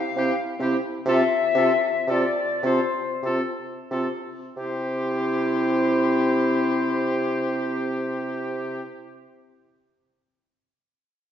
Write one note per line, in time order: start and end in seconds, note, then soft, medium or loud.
0.00 0.74 F5 loud
0.15 0.32 C3 medium
0.15 0.31 C4 medium
0.15 0.34 E4 medium
0.15 0.34 G4 medium
0.59 0.76 C3 medium
0.59 0.75 C4 medium
0.59 0.78 E4 medium
0.59 0.77 G4 medium
1.06 1.22 C3 loud
1.06 1.23 C4 medium
1.06 1.24 F4 loud
1.06 1.25 A4 medium
1.06 2.12 E5 loud
1.55 1.71 C3 loud
1.55 1.72 C4 medium
1.55 1.73 F4 medium
1.55 1.73 A4 medium
2.07 2.23 C3 medium
2.07 2.25 C4 medium
2.07 2.26 F4 medium
2.07 2.25 A4 medium
2.07 2.67 D5 loud
2.63 2.79 C3 medium
2.63 2.80 C4 medium
2.63 2.82 F4 medium
2.63 2.81 A4 medium
2.63 3.25 C5 loud
3.23 3.39 C3 medium
3.23 3.42 C4 medium
3.23 3.42 F4 medium
3.23 3.42 A4 medium
3.91 4.07 C3 medium
3.91 4.07 C4 medium
3.91 4.09 F4 medium
3.91 4.08 A4 medium
4.57 8.81 C3 medium
4.57 8.83 C4 medium
4.57 8.84 E4 medium
4.57 8.83 G4 medium
4.57 8.83 C5 medium